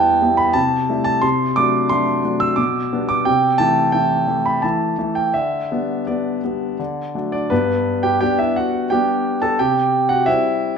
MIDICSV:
0, 0, Header, 1, 2, 480
1, 0, Start_track
1, 0, Key_signature, 1, "major"
1, 0, Tempo, 677201
1, 877, Time_signature, 3, 2, 24, 8
1, 3286, Tempo, 715137
1, 5686, Tempo, 684932
1, 7484, End_track
2, 0, Start_track
2, 0, Title_t, "Grand piano"
2, 0, Program_c, 0, 0
2, 0, Control_c, 0, 64, 127
2, 0, Note_on_c, 0, 40, 51
2, 0, Note_on_c, 0, 55, 43
2, 0, Note_on_c, 0, 59, 44
2, 0, Note_on_c, 0, 64, 48
2, 0, Note_on_c, 0, 79, 77
2, 0, Note_on_c, 0, 81, 85
2, 135, Note_off_c, 0, 55, 0
2, 136, Note_off_c, 0, 59, 0
2, 137, Note_off_c, 0, 64, 0
2, 155, Note_on_c, 0, 55, 42
2, 158, Note_on_c, 0, 59, 38
2, 160, Note_on_c, 0, 64, 44
2, 265, Note_on_c, 0, 83, 74
2, 272, Note_off_c, 0, 79, 0
2, 372, Note_off_c, 0, 55, 0
2, 374, Note_off_c, 0, 59, 0
2, 375, Note_off_c, 0, 64, 0
2, 379, Note_off_c, 0, 81, 0
2, 379, Note_on_c, 0, 81, 80
2, 388, Note_on_c, 0, 48, 55
2, 392, Note_off_c, 0, 83, 0
2, 409, Control_c, 0, 64, 0
2, 417, Note_off_c, 0, 40, 0
2, 525, Control_c, 0, 64, 127
2, 624, Note_off_c, 0, 48, 0
2, 634, Note_on_c, 0, 55, 42
2, 636, Note_on_c, 0, 57, 40
2, 640, Note_on_c, 0, 64, 46
2, 730, Note_off_c, 0, 81, 0
2, 740, Note_on_c, 0, 81, 81
2, 851, Note_off_c, 0, 55, 0
2, 852, Note_off_c, 0, 57, 0
2, 854, Note_off_c, 0, 64, 0
2, 861, Note_on_c, 0, 84, 82
2, 868, Note_off_c, 0, 81, 0
2, 870, Note_on_c, 0, 48, 53
2, 886, Control_c, 0, 64, 0
2, 1012, Control_c, 0, 64, 127
2, 1105, Note_off_c, 0, 48, 0
2, 1106, Note_on_c, 0, 86, 86
2, 1108, Note_off_c, 0, 84, 0
2, 1113, Note_on_c, 0, 54, 44
2, 1115, Note_on_c, 0, 57, 45
2, 1120, Note_on_c, 0, 62, 50
2, 1330, Note_off_c, 0, 54, 0
2, 1331, Note_off_c, 0, 57, 0
2, 1333, Note_off_c, 0, 62, 0
2, 1343, Note_on_c, 0, 84, 87
2, 1350, Note_off_c, 0, 86, 0
2, 1350, Note_on_c, 0, 54, 45
2, 1356, Note_on_c, 0, 57, 42
2, 1360, Note_on_c, 0, 62, 48
2, 1568, Note_off_c, 0, 54, 0
2, 1570, Note_off_c, 0, 57, 0
2, 1573, Note_off_c, 0, 62, 0
2, 1589, Note_on_c, 0, 54, 39
2, 1591, Note_on_c, 0, 57, 38
2, 1596, Note_on_c, 0, 62, 44
2, 1701, Note_on_c, 0, 88, 76
2, 1708, Note_off_c, 0, 84, 0
2, 1807, Note_off_c, 0, 54, 0
2, 1809, Note_off_c, 0, 57, 0
2, 1811, Note_off_c, 0, 62, 0
2, 1815, Note_on_c, 0, 86, 70
2, 1826, Note_on_c, 0, 47, 58
2, 1828, Note_off_c, 0, 88, 0
2, 1840, Control_c, 0, 64, 0
2, 1966, Control_c, 0, 64, 127
2, 2065, Note_off_c, 0, 47, 0
2, 2076, Note_on_c, 0, 55, 39
2, 2076, Note_on_c, 0, 59, 40
2, 2079, Note_on_c, 0, 62, 44
2, 2177, Note_off_c, 0, 86, 0
2, 2187, Note_on_c, 0, 86, 78
2, 2293, Note_off_c, 0, 55, 0
2, 2293, Note_off_c, 0, 59, 0
2, 2295, Note_off_c, 0, 62, 0
2, 2306, Note_on_c, 0, 79, 76
2, 2313, Note_off_c, 0, 86, 0
2, 2313, Note_on_c, 0, 48, 54
2, 2328, Control_c, 0, 64, 0
2, 2458, Control_c, 0, 64, 127
2, 2538, Note_on_c, 0, 81, 83
2, 2547, Note_off_c, 0, 48, 0
2, 2547, Note_on_c, 0, 52, 44
2, 2551, Note_off_c, 0, 79, 0
2, 2551, Note_on_c, 0, 57, 42
2, 2551, Note_on_c, 0, 64, 46
2, 2766, Note_off_c, 0, 52, 0
2, 2769, Note_off_c, 0, 57, 0
2, 2769, Note_off_c, 0, 64, 0
2, 2780, Note_on_c, 0, 79, 72
2, 2787, Note_off_c, 0, 81, 0
2, 2791, Note_on_c, 0, 52, 38
2, 2791, Note_on_c, 0, 57, 39
2, 2796, Note_on_c, 0, 64, 40
2, 3011, Note_off_c, 0, 57, 0
2, 3012, Note_off_c, 0, 52, 0
2, 3014, Note_off_c, 0, 64, 0
2, 3030, Note_on_c, 0, 52, 37
2, 3031, Note_on_c, 0, 57, 36
2, 3035, Note_on_c, 0, 64, 42
2, 3153, Note_off_c, 0, 79, 0
2, 3158, Note_on_c, 0, 83, 63
2, 3255, Note_off_c, 0, 52, 0
2, 3256, Note_off_c, 0, 57, 0
2, 3257, Note_off_c, 0, 64, 0
2, 3276, Note_on_c, 0, 81, 62
2, 3283, Note_off_c, 0, 83, 0
2, 3284, Note_on_c, 0, 52, 36
2, 3286, Note_on_c, 0, 57, 36
2, 3288, Note_on_c, 0, 64, 42
2, 3290, Control_c, 0, 64, 0
2, 3497, Note_off_c, 0, 52, 0
2, 3498, Note_off_c, 0, 57, 0
2, 3499, Note_off_c, 0, 64, 0
2, 3519, Note_on_c, 0, 52, 36
2, 3523, Note_on_c, 0, 57, 35
2, 3524, Note_on_c, 0, 64, 41
2, 3632, Note_on_c, 0, 79, 64
2, 3637, Note_off_c, 0, 81, 0
2, 3737, Note_off_c, 0, 52, 0
2, 3739, Note_off_c, 0, 57, 0
2, 3740, Note_off_c, 0, 64, 0
2, 3757, Note_on_c, 0, 76, 67
2, 3758, Note_off_c, 0, 79, 0
2, 3761, Note_on_c, 0, 50, 45
2, 3920, Control_c, 0, 64, 127
2, 3998, Note_off_c, 0, 50, 0
2, 4010, Note_on_c, 0, 55, 35
2, 4013, Note_on_c, 0, 59, 35
2, 4014, Note_on_c, 0, 62, 39
2, 4227, Note_off_c, 0, 55, 0
2, 4229, Note_off_c, 0, 59, 0
2, 4230, Note_off_c, 0, 62, 0
2, 4246, Note_off_c, 0, 76, 0
2, 4248, Note_on_c, 0, 74, 51
2, 4254, Note_on_c, 0, 55, 34
2, 4255, Note_on_c, 0, 59, 34
2, 4258, Note_on_c, 0, 62, 38
2, 4470, Note_off_c, 0, 55, 0
2, 4471, Note_off_c, 0, 59, 0
2, 4472, Note_off_c, 0, 62, 0
2, 4498, Note_on_c, 0, 55, 33
2, 4500, Note_on_c, 0, 62, 33
2, 4501, Note_on_c, 0, 59, 33
2, 4713, Note_off_c, 0, 55, 0
2, 4714, Note_off_c, 0, 62, 0
2, 4715, Note_off_c, 0, 59, 0
2, 4735, Note_on_c, 0, 50, 44
2, 4741, Control_c, 0, 64, 0
2, 4872, Control_c, 0, 64, 127
2, 4968, Note_off_c, 0, 50, 0
2, 4973, Note_on_c, 0, 54, 31
2, 4973, Note_on_c, 0, 57, 33
2, 4975, Note_off_c, 0, 74, 0
2, 4979, Note_on_c, 0, 62, 35
2, 5089, Note_on_c, 0, 74, 62
2, 5092, Note_off_c, 0, 62, 0
2, 5102, Note_on_c, 0, 62, 46
2, 5188, Note_off_c, 0, 54, 0
2, 5188, Note_off_c, 0, 57, 0
2, 5208, Note_on_c, 0, 71, 73
2, 5209, Note_off_c, 0, 62, 0
2, 5210, Note_off_c, 0, 74, 0
2, 5216, Note_on_c, 0, 43, 51
2, 5216, Note_on_c, 0, 59, 51
2, 5223, Control_c, 0, 64, 0
2, 5339, Control_c, 0, 64, 127
2, 5544, Note_off_c, 0, 59, 0
2, 5563, Note_on_c, 0, 79, 73
2, 5564, Note_off_c, 0, 71, 0
2, 5568, Note_on_c, 0, 67, 56
2, 5672, Note_off_c, 0, 43, 0
2, 5672, Note_off_c, 0, 79, 0
2, 5677, Note_off_c, 0, 67, 0
2, 5682, Note_on_c, 0, 79, 79
2, 5689, Note_on_c, 0, 67, 60
2, 5691, Note_on_c, 0, 55, 41
2, 5693, Note_on_c, 0, 59, 40
2, 5694, Control_c, 0, 64, 0
2, 5696, Note_on_c, 0, 62, 44
2, 5801, Note_off_c, 0, 67, 0
2, 5806, Note_off_c, 0, 79, 0
2, 5808, Note_on_c, 0, 76, 69
2, 5814, Note_on_c, 0, 64, 52
2, 5925, Note_off_c, 0, 64, 0
2, 5930, Note_off_c, 0, 76, 0
2, 5933, Note_on_c, 0, 78, 65
2, 5940, Note_on_c, 0, 66, 48
2, 6148, Note_off_c, 0, 55, 0
2, 6150, Note_off_c, 0, 59, 0
2, 6151, Note_off_c, 0, 62, 0
2, 6162, Note_off_c, 0, 66, 0
2, 6169, Note_on_c, 0, 79, 74
2, 6175, Note_off_c, 0, 78, 0
2, 6177, Note_on_c, 0, 55, 41
2, 6180, Note_on_c, 0, 67, 62
2, 6181, Note_on_c, 0, 59, 40
2, 6185, Note_on_c, 0, 62, 44
2, 6513, Note_off_c, 0, 67, 0
2, 6531, Note_on_c, 0, 81, 76
2, 6532, Note_off_c, 0, 79, 0
2, 6537, Note_on_c, 0, 69, 57
2, 6627, Note_off_c, 0, 55, 0
2, 6629, Note_off_c, 0, 59, 0
2, 6632, Note_off_c, 0, 62, 0
2, 6647, Note_off_c, 0, 69, 0
2, 6652, Note_off_c, 0, 81, 0
2, 6653, Note_on_c, 0, 79, 77
2, 6660, Note_on_c, 0, 48, 54
2, 6661, Note_on_c, 0, 67, 60
2, 6770, Control_c, 0, 64, 127
2, 6990, Note_off_c, 0, 67, 0
2, 7002, Note_on_c, 0, 78, 74
2, 7011, Note_off_c, 0, 79, 0
2, 7011, Note_on_c, 0, 66, 54
2, 7119, Note_off_c, 0, 48, 0
2, 7121, Note_on_c, 0, 76, 81
2, 7122, Note_off_c, 0, 66, 0
2, 7125, Note_off_c, 0, 78, 0
2, 7132, Note_on_c, 0, 55, 40
2, 7134, Note_on_c, 0, 64, 63
2, 7137, Note_on_c, 0, 60, 42
2, 7140, Control_c, 0, 64, 0
2, 7461, Note_off_c, 0, 64, 0
2, 7480, Note_off_c, 0, 76, 0
2, 7484, Note_off_c, 0, 55, 0
2, 7484, Note_off_c, 0, 60, 0
2, 7484, End_track
0, 0, End_of_file